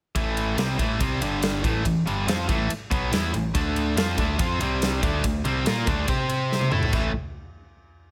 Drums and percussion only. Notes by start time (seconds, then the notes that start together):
0.16 kick, ride
0.37 ride
0.58 snare, ride
0.79 kick, ride
1.00 kick, ride
1.22 ride
1.43 snare, ride
1.64 kick, ride
1.85 kick, ride
2.07 ride
2.28 snare, ride
2.49 kick, ride
2.70 ride
2.91 kick, ride
3.13 snare, ride
3.34 ride
3.55 kick, ride
3.76 ride
3.97 snare, ride
4.18 kick, ride
4.39 kick, ride
4.61 ride
4.82 snare, ride
5.03 kick, ride
5.24 kick, ride
5.45 ride
5.66 snare, ride
5.87 kick, ride
6.08 kick, ride
6.29 ride
6.52 snare
6.61 high tom
6.72 mid tom
6.83 floor tom
6.93 kick, crash